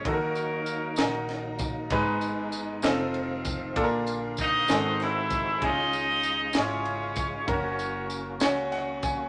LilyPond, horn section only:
\new Staff \with { instrumentName = "Horn section" } { \time 6/8 \key ees \minor \tempo 4. = 65 << { <bes bes'>2 r4 | r2. | r4 <ees' ees''>4 <fes' fes''>4 | <ees' ees''>4. <des' des''>4. |
<des' des''>4 r2 | } \\ { <ees' ges'>2 r4 | r2. | r4 <ges' c''>4 <a' c''>4 | aes'4. <f' aes'>4. |
<ges' bes'>4. r4. | } >> }